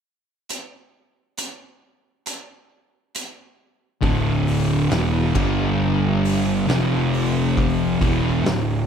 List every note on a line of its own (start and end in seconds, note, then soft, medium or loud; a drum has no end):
0.49 closed hi-hat medium
1.37 closed hi-hat medium
2.26 closed hi-hat medium
3.15 closed hi-hat medium
4.01 4.87 D1 medium
4.01 4.89 D2 medium
4.01 4.89 A2 loud
4.01 4.90 D3 loud
4.01 kick loud
4.01 open hi-hat medium
4.47 open hi-hat medium
4.91 5.32 E1 medium
4.91 5.34 E2 medium
4.91 5.34 B2 medium
4.91 5.34 E3 loud
4.91 snare loud
4.91 open hi-hat medium
5.35 6.64 G1 loud
5.35 6.67 G2 medium
5.35 6.67 D3 loud
5.35 6.67 G3 medium
5.35 kick loud
5.35 crash medium
6.24 open hi-hat medium
6.67 7.97 F1 loud
6.67 8.00 F2 medium
6.67 8.00 C3 loud
6.67 8.00 F3 loud
6.67 snare loud
6.67 open hi-hat medium
7.13 open hi-hat medium
7.57 kick loud
7.57 open hi-hat medium
8.01 8.42 E1 loud
8.01 8.44 E2 medium
8.01 8.44 B2 medium
8.01 8.45 E3 medium
8.01 kick loud
8.01 open hi-hat medium
8.45 8.86 D1 medium
8.45 8.81 D2 medium
8.45 8.81 A2 medium
8.45 snare loud
8.45 open hi-hat medium